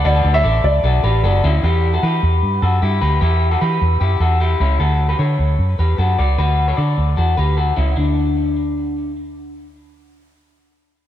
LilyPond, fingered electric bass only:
\new Staff \with { instrumentName = "Fingered electric bass" } { \clef bass \time 4/4 \key e \dorian \tempo 4 = 152 d,8 d,8 a,,8 cis,8 b,,8 a,,8 fis,,8 d,8 | e,4 e8 e,8 g,8 fis,8 g,8 d,8 | e,4 e8 e,8 fis,8 e,4 cis,8 | d,4 d8 d,8 fis,8 e,8 fis,8 cis,8 |
d,4 d8 d,8 e,8 d,4 cis,8 | d,1~ | d,1 | }